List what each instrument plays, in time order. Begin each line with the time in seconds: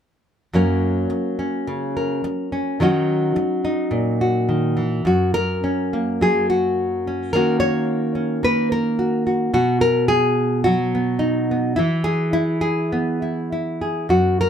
0.53 nylon-string guitar F#2 F#3 A#3 C#4 A#4
1.10 muted nylon-string guitar stroke
1.39 nylon-string guitar C#4
1.67 nylon-string guitar C#3
1.97 nylon-string guitar A#4
2.24 muted nylon-string guitar stroke
2.52 nylon-string guitar C#4
2.80 nylon-string guitar D#3 F#3 C#4 D#4 F#4
3.36 muted nylon-string guitar stroke
3.65 nylon-string guitar D#4
3.91 nylon-string guitar A#2
4.21 nylon-string guitar F#4
4.49 nylon-string guitar D#3
4.77 nylon-string guitar E3
5.05 nylon-string guitar F#2 F#4
5.34 nylon-string guitar A#4
5.64 nylon-string guitar C#4
5.93 nylon-string guitar A#3
6.21 nylon-string guitar F#3 G#4
6.50 nylon-string guitar F#4
7.07 nylon-string guitar C#4
7.33 nylon-string guitar D#3 A#3 C#4 F#4 A#4
7.60 nylon-string guitar C#5
8.15 nylon-string guitar C#4
8.43 nylon-string guitar A#3 B4
8.72 nylon-string guitar A#4
8.99 nylon-string guitar F#4
9.27 nylon-string guitar F#4
9.54 nylon-string guitar B2 F#4
9.81 nylon-string guitar A#4
10.08 nylon-string guitar G#4
10.64 nylon-string guitar F#3 F#4
10.95 nylon-string guitar B3
11.19 nylon-string guitar D#4
11.51 nylon-string guitar B3
11.76 nylon-string guitar E3 E4
12.04 nylon-string guitar G#4
12.33 nylon-string guitar E4
12.61 nylon-string guitar G#4
12.92 nylon-string guitar B3
13.22 nylon-string guitar E4
13.52 nylon-string guitar E4
13.81 nylon-string guitar G#4
14.09 nylon-string guitar F#2 F#4
14.41 nylon-string guitar A#4